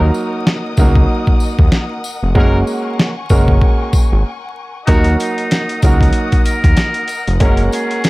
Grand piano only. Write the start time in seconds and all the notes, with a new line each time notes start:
Already playing: F#3 A#3 D#4 F#4 A#4
0.79 F#3 A#3 D#4 F#4 A#4
2.35 G#3 A#3 C#4 F#4 A#4
3.30 G#3 A#3 C#4 F#4 A#4
4.88 F#3 A#3 D#4 F#4 A#4
5.84 F#3 A#3 D#4 F#4 A#4
7.40 G#3 A#3 C#4 F#4 A#4